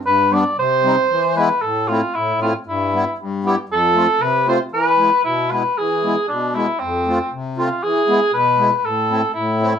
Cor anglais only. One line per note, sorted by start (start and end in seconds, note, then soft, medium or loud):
0.06 0.34 B4 loud
0.33 0.58 D5 medium
0.59 1.33 C5 loud
1.36 1.63 B4 medium
1.61 1.89 A4 medium
1.88 2.16 F4 medium
2.14 2.41 E4 medium
2.42 2.53 F4 medium
2.68 3.15 E4 medium
3.46 3.57 G4 medium
3.72 4.23 A4 loud
4.22 4.47 B4 loud
4.48 4.59 C5 medium
4.74 5.21 B4 loud
5.25 5.52 E4 medium
5.50 5.79 B4 medium
5.77 6.27 G#4 medium
6.28 6.57 D4 medium
6.55 6.81 E4 medium
6.79 7.31 C4 medium
7.58 7.84 F4 medium
7.83 8.33 G#4 loud
8.33 8.75 B4 loud
8.75 8.87 B4 medium
8.85 9.33 A4 loud
9.34 9.79 E4 medium